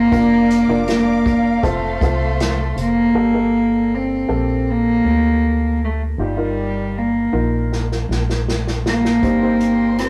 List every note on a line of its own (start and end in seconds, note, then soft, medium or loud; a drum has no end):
0.00 0.87 A#3 loud
0.00 0.13 C4 medium
0.00 0.13 E4 medium
0.00 0.12 A#4 medium
0.00 1.60 A#4 medium
0.11 0.65 F1 loud
0.11 0.66 D4 medium
0.11 0.66 F4 medium
0.11 0.66 A#4 medium
0.11 1.62 D5 medium
0.11 3.13 F5 medium
0.11 1.62 D6 medium
0.11 kick medium
0.11 closed hi-hat medium
0.50 closed hi-hat medium
0.68 1.60 F1 medium
0.68 1.64 D4 medium
0.68 1.62 F4 medium
0.68 1.64 A#4 medium
0.87 1.64 A#3 medium
0.87 snare loud
0.87 closed hi-hat medium
1.26 kick medium
1.26 closed hi-hat medium
1.63 1.99 F1 loud
1.63 2.77 A3 medium
1.63 1.99 C4 medium
1.63 2.00 F4 medium
1.63 2.00 A4 medium
1.63 3.14 A4 medium
1.63 3.14 C5 medium
1.63 3.14 C6 medium
1.63 kick loud
1.63 closed hi-hat medium
2.01 2.73 C2 medium
2.01 3.10 C4 medium
2.01 3.10 F4 medium
2.01 3.10 A4 medium
2.01 kick medium
2.01 closed hi-hat medium
2.40 snare loud
2.40 closed hi-hat medium
2.77 3.12 F1 loud
2.77 3.96 A#3 loud
2.77 closed hi-hat medium
3.15 4.25 G1 loud
3.15 4.25 G2 medium
3.15 3.33 A#3 medium
3.15 3.32 G4 medium
3.15 3.33 A4 medium
3.34 4.25 A#3 medium
3.34 4.25 G4 medium
3.34 4.25 A4 medium
3.94 4.72 C4 medium
4.28 5.01 A#1 medium
4.28 5.73 A#3 medium
4.28 5.73 G4 soft
4.28 5.73 A4 medium
4.70 5.83 A#3 loud
5.05 6.15 D2 medium
5.84 6.01 A3 medium
6.18 7.29 G1 loud
6.18 7.29 G2 medium
6.18 7.00 G3 medium
6.18 6.36 D#4 medium
6.18 6.36 F4 medium
6.18 6.38 G4 medium
6.37 7.28 D#4 medium
6.37 7.28 F4 medium
6.37 7.28 A#4 medium
6.98 7.73 A#3 medium
7.33 8.05 A#1 medium
7.33 8.77 D#4 medium
7.33 8.78 F4 medium
7.33 8.77 A#4 medium
7.72 snare soft
7.92 snare soft
8.09 9.19 A#1 medium
8.09 snare medium
8.30 snare medium
8.48 snare medium
8.67 snare medium
8.86 10.00 A#3 loud
8.86 snare medium
9.05 snare medium
9.22 10.09 G1 loud
9.22 10.09 G2 medium
9.22 9.41 C4 medium
9.22 9.41 D#4 medium
9.22 10.09 G4 medium
9.22 9.41 G4 medium
9.22 10.09 C5 medium
9.22 10.09 G5 medium
9.22 10.09 C6 medium
9.22 kick medium
9.22 closed hi-hat medium
9.42 10.09 C4 medium
9.42 10.09 D#4 medium
9.42 10.09 G4 medium
9.60 closed hi-hat medium
9.98 10.09 C4 medium
9.98 cross-stick loud
9.98 closed hi-hat medium